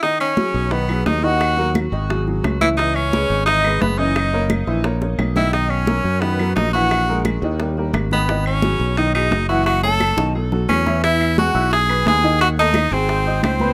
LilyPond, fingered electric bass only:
\new Staff \with { instrumentName = "Fingered electric bass" } { \clef bass \time 4/4 \key gis \minor \tempo 4 = 174 r4. b,,4. dis,4~ | dis,4. gis,,4. cis,4~ | cis,4. gis,,4. fis,,4~ | fis,,4. ais,,4. b,,4~ |
b,,4. fis,4. ais,,4~ | ais,,4. dis,4. gis,,4~ | gis,,4. b,,4. fis,,4~ | fis,,4. b,,4. e,4~ |
e,4. b,,4. dis,4~ | dis,4. gis,,4. cis,4 | }